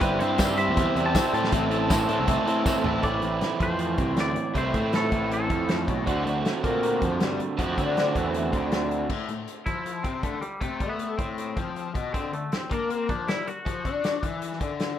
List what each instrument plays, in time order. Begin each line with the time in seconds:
0.01 picked electric bass G1, overdriven electric guitar G3 C4 E4 G4, clean electric guitar B4, kick, closed hi-hat
0.19 picked electric bass G2, overdriven electric guitar G3 C4 E4 G4, clean electric guitar C5, closed hi-hat
0.38 picked electric bass G2, overdriven electric guitar G3 C4 E4 G4, kick, snare, closed hi-hat, tambourine
0.58 overdriven electric guitar G3 C4 E4 G4, clean electric guitar E5, closed hi-hat
0.68 picked electric bass E2
0.77 overdriven electric guitar G3 C4 E4 G4, kick, closed hi-hat
0.96 picked electric bass E2, overdriven electric guitar G3 C4 E4 G4, closed hi-hat
1.06 clean electric guitar A5
1.15 overdriven electric guitar G3 C4 E4 G4, kick, snare, closed hi-hat, tambourine
1.34 picked electric bass A2, overdriven electric guitar G3 C4 E4 G4, clean electric guitar A5, closed hi-hat
1.44 snare
1.52 picked electric bass A1, overdriven electric guitar A2 E3 A3 C4 E4 A4, kick, closed hi-hat
1.70 overdriven electric guitar A2 E3 A3 C4 E4 A4, closed hi-hat
1.89 overdriven electric guitar A2 E3 A3 C4 E4 A4, kick, snare, closed hi-hat, tambourine
2.08 overdriven electric guitar A2 E3 A3 C4 E4 A4, picked electric bass A2, closed hi-hat
2.20 picked electric bass C2
2.27 overdriven electric guitar A2 E3 A3 C4 E4 A4, kick, closed hi-hat
2.46 overdriven electric guitar A2 E3 A3 C4 E4 A4, closed hi-hat
2.66 overdriven electric guitar A2 E3 A3 C4 E4 A4, picked electric bass A2, kick, snare, tambourine
2.84 picked electric bass A1, overdriven electric guitar A2 E3 A3 C4 E4 A4, floor tom
3.03 picked electric bass A1, overdriven electric guitar A2 E3 A3 C4 E4, clean electric guitar D5, kick, closed hi-hat
3.22 picked electric bass A1, overdriven electric guitar A2, closed hi-hat
3.41 snare, closed hi-hat
3.60 picked electric bass F2, overdriven electric guitar F3, clean electric guitar C5, kick, closed hi-hat
3.79 closed hi-hat
3.98 picked electric bass C2, overdriven electric guitar C3, kick, closed hi-hat
4.17 picked electric bass D2, overdriven electric guitar D3, clean electric guitar D5, snare, closed hi-hat
4.36 muted overdriven electric guitar stroke, muted picked electric bass stroke, closed hi-hat
4.55 picked electric bass C2, overdriven electric guitar A2 C3 E3 A3 C4 E4, clean electric guitar C5, kick, closed hi-hat
4.74 picked electric bass A2, overdriven electric guitar A3, kick, closed hi-hat
4.93 clean electric guitar A4, snare, closed hi-hat
5.12 picked electric bass A1, overdriven electric guitar A2, kick, closed hi-hat
5.31 clean electric guitar A4, closed hi-hat
5.49 picked electric bass F2, overdriven electric guitar F3, kick, closed hi-hat
5.69 snare, closed hi-hat
5.88 picked electric bass B1, overdriven electric guitar B2, kick, closed hi-hat
6.07 picked electric bass D2, overdriven electric guitar D3 A3 C4 F#4, kick, closed hi-hat
6.26 picked electric bass D2, overdriven electric guitar D3, closed hi-hat
6.45 snare, closed hi-hat
6.64 picked electric bass A#2, overdriven electric guitar A#3, kick, closed hi-hat
6.83 closed hi-hat
7.02 picked electric bass F2, overdriven electric guitar F3, kick, closed hi-hat
7.20 picked electric bass G2, overdriven electric guitar G3, snare, closed hi-hat
7.40 muted picked electric bass stroke, muted overdriven electric guitar stroke, closed hi-hat
7.57 picked electric bass F2, overdriven electric guitar D3 F3 A3 C4 F#4, kick, closed hi-hat
7.77 picked electric bass D3, overdriven electric guitar D4, kick, closed hi-hat
7.97 snare, closed hi-hat
8.15 picked electric bass E2, overdriven electric guitar E3, kick, closed hi-hat
8.34 closed hi-hat
8.52 picked electric bass D2, overdriven electric guitar D3, kick, closed hi-hat
8.72 snare, closed hi-hat
8.91 closed hi-hat
9.10 overdriven electric guitar A2, kick, crash
9.28 overdriven electric guitar A2, closed hi-hat
9.48 closed hi-hat
9.66 overdriven electric guitar F3, clean electric guitar E4, kick, closed hi-hat
9.86 closed hi-hat
10.03 overdriven electric guitar C3, clean electric guitar C4, kick, closed hi-hat
10.23 overdriven electric guitar D3, clean electric guitar A3, kick, closed hi-hat
10.41 clean electric guitar G3, muted overdriven electric guitar stroke, closed hi-hat
10.60 overdriven electric guitar C3, clean electric guitar A3, kick, closed hi-hat
10.80 overdriven electric guitar A3, kick, closed hi-hat
10.89 clean electric guitar B3
10.99 closed hi-hat
11.18 overdriven electric guitar A2, clean electric guitar C4, kick, closed hi-hat
11.38 closed hi-hat
11.57 overdriven electric guitar F3, kick, closed hi-hat
11.76 closed hi-hat
11.95 overdriven electric guitar B2, kick, closed hi-hat
12.14 overdriven electric guitar D3, clean electric guitar C4, kick, closed hi-hat
12.33 overdriven electric guitar D3, clean electric guitar A3, closed hi-hat
12.52 clean electric guitar C4, snare, closed hi-hat
12.71 overdriven electric guitar A#3, clean electric guitar D4, kick, closed hi-hat
12.90 clean electric guitar C4, closed hi-hat
13.09 overdriven electric guitar F3, clean electric guitar D4, kick, closed hi-hat
13.27 overdriven electric guitar G3, clean electric guitar E4, snare, closed hi-hat
13.47 clean electric guitar F#4, muted overdriven electric guitar stroke, closed hi-hat
13.66 overdriven electric guitar F3, kick, closed hi-hat
13.85 overdriven electric guitar D4, kick, closed hi-hat
14.04 snare, closed hi-hat
14.23 overdriven electric guitar E3, kick, closed hi-hat
14.42 closed hi-hat
14.52 snare
14.61 overdriven electric guitar D3, kick, closed hi-hat
14.80 snare, closed hi-hat